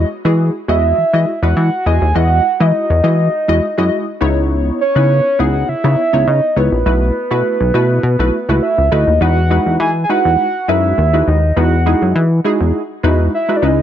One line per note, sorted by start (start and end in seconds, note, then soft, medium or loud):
0.25 0.50 E3 medium
0.25 0.52 G#3 medium
0.25 0.52 E4 medium
0.25 0.52 F#4 medium
0.25 0.52 G#4 medium
0.68 0.93 E2 medium
0.68 0.96 G#3 medium
0.68 0.96 E4 medium
0.68 0.96 F#4 medium
0.68 0.96 D#5 medium
0.68 1.39 E5 loud
0.98 1.04 E3 medium
1.13 1.25 E3 medium
1.13 1.31 G#3 medium
1.13 1.31 E4 medium
1.13 1.31 F#4 medium
1.13 1.31 D#5 medium
1.42 1.54 E2 loud
1.42 1.70 G#3 medium
1.42 1.70 E4 medium
1.42 1.70 F#4 medium
1.42 1.70 B4 medium
1.42 1.88 F#5 loud
1.57 1.70 E3 loud
1.86 1.99 E2 medium
1.86 2.05 G#3 medium
1.86 2.05 E4 medium
1.86 2.05 F#4 medium
1.86 2.05 D#5 medium
1.86 2.17 G#5 loud
2.01 2.13 D#2 medium
2.15 2.40 E2 loud
2.15 2.42 G#3 medium
2.15 2.43 E4 medium
2.15 2.43 F#4 medium
2.15 2.43 D#5 medium
2.15 2.62 F#5 loud
2.60 2.72 E3 medium
2.60 2.87 G#3 medium
2.60 2.87 E4 medium
2.60 2.88 F#4 medium
2.60 2.88 D#5 medium
2.60 4.22 D#5 medium
2.90 3.02 E2 loud
3.03 3.29 E3 loud
3.03 3.31 G#3 medium
3.03 3.31 E4 medium
3.03 3.31 F#4 medium
3.03 3.31 D#5 medium
3.48 3.60 E2 medium
3.48 3.66 G#3 medium
3.48 3.66 E4 medium
3.48 3.66 F#4 medium
3.48 3.66 D#5 loud
3.77 3.90 F#2 medium
3.77 4.05 G#3 medium
3.77 4.05 E4 medium
3.77 4.05 F#4 medium
3.77 4.05 D#5 loud
4.21 4.71 C#2 loud
4.21 4.80 B3 medium
4.21 4.80 D#4 medium
4.21 4.80 E4 medium
4.21 4.80 C#5 loud
4.81 5.41 C#5 loud
4.95 5.20 C#3 medium
4.95 5.23 B3 medium
4.95 5.23 D#4 medium
4.95 5.23 E4 medium
4.95 5.23 B4 medium
5.39 5.64 C#2 medium
5.39 5.66 B3 medium
5.39 5.66 D#4 medium
5.39 5.67 E4 medium
5.39 5.67 G#4 medium
5.39 5.70 F#5 loud
5.69 5.75 C#3 soft
5.69 6.29 E5 loud
5.84 5.96 C#3 loud
5.84 6.01 B3 medium
5.84 6.02 D#4 medium
5.84 6.02 E4 medium
5.84 6.02 C#5 medium
6.13 6.25 C#2 loud
6.13 6.40 B3 medium
6.13 6.40 D#4 medium
6.13 6.40 E4 medium
6.13 6.41 C#5 medium
6.27 6.40 C#3 loud
6.27 6.58 D#5 loud
6.56 6.70 C#2 medium
6.56 6.75 B3 medium
6.56 6.75 D#4 medium
6.56 6.76 E4 medium
6.56 8.62 B4 medium
6.56 6.76 C#5 medium
6.72 6.84 A#1 medium
6.86 7.11 B1 loud
6.86 7.13 A3 medium
6.86 7.13 E4 medium
6.86 7.13 F#4 medium
6.86 7.14 B4 medium
7.31 7.43 B2 medium
7.31 7.58 A3 medium
7.31 7.58 E4 medium
7.31 7.58 F#4 medium
7.31 7.58 B4 medium
7.60 7.72 B1 loud
7.74 7.99 B2 loud
7.74 8.02 A3 loud
7.74 8.02 E4 medium
7.74 8.02 F#4 medium
7.74 8.02 B4 loud
8.03 8.17 B2 loud
8.19 8.31 B1 medium
8.19 8.37 A3 medium
8.19 8.37 E4 medium
8.19 8.37 F#4 medium
8.19 8.37 B4 loud
8.48 8.60 C#2 medium
8.48 8.76 A3 medium
8.48 8.76 E4 medium
8.48 8.76 F#4 medium
8.48 8.76 B4 medium
8.63 8.94 E5 medium
8.78 8.90 C#2 medium
8.91 9.05 D2 medium
8.91 9.10 A3 medium
8.91 9.11 E4 medium
8.91 9.11 F#4 medium
8.91 9.11 B4 loud
8.91 9.21 D#5 medium
9.07 9.19 D#2 medium
9.21 9.59 E2 loud
9.21 9.40 G#3 medium
9.21 9.40 D#4 medium
9.21 9.40 E4 medium
9.21 9.40 F#4 medium
9.21 9.40 B4 medium
9.21 9.76 F#5 loud
9.50 9.87 G#3 medium
9.50 9.87 D#4 medium
9.50 9.87 E4 medium
9.50 9.87 F#4 medium
9.50 9.88 B4 medium
9.66 9.78 E2 medium
9.80 10.05 E3 loud
9.80 9.91 G#5 loud
10.04 10.11 G#5 medium
10.09 10.46 G#3 medium
10.09 10.46 D#4 medium
10.09 10.46 E4 medium
10.09 10.46 F#4 medium
10.09 10.46 B4 medium
10.09 10.70 F#5 loud
10.25 10.37 E2 loud
10.68 10.93 F#2 medium
10.68 10.96 G#3 medium
10.68 10.96 D#4 medium
10.68 10.96 E4 medium
10.68 10.96 F#4 medium
10.68 10.96 B4 medium
10.68 11.29 E5 loud
10.98 11.23 D#2 loud
11.13 11.40 G#3 medium
11.13 11.40 D#4 medium
11.13 11.41 E4 medium
11.13 11.41 F#4 medium
11.13 11.41 B4 medium
11.27 11.52 D#2 medium
11.27 11.57 D#5 medium
11.56 11.95 E2 loud
11.56 11.75 G#3 medium
11.56 11.75 D#4 medium
11.56 11.75 E4 medium
11.56 11.76 F#4 medium
11.56 11.76 B4 medium
11.56 12.12 F#5 loud
11.86 12.23 G#3 medium
11.86 12.23 D#4 medium
11.86 12.23 E4 medium
11.86 12.23 F#4 medium
11.86 12.23 G#4 loud
12.02 12.13 F#2 medium
12.15 12.40 E3 loud
12.44 12.81 G#3 medium
12.44 12.81 D#4 medium
12.44 12.82 E4 medium
12.44 12.82 F#4 medium
12.44 12.82 G#4 loud
12.60 12.72 E2 medium
13.03 13.28 E2 loud
13.03 13.31 G#3 loud
13.03 13.31 D#4 medium
13.03 13.31 E4 medium
13.03 13.31 F#4 medium
13.03 13.31 B4 loud
13.34 13.58 E5 medium
13.48 13.61 G#3 medium
13.48 13.61 D#4 medium
13.48 13.61 E4 medium
13.48 13.63 F#4 medium
13.48 13.62 B4 medium
13.56 13.66 D5 medium
13.62 13.82 C#2 medium
13.62 13.82 G#3 medium
13.62 13.82 C#4 medium
13.62 13.82 D#4 medium
13.62 13.82 E4 medium
13.62 13.82 B4 medium
13.62 13.82 D#5 medium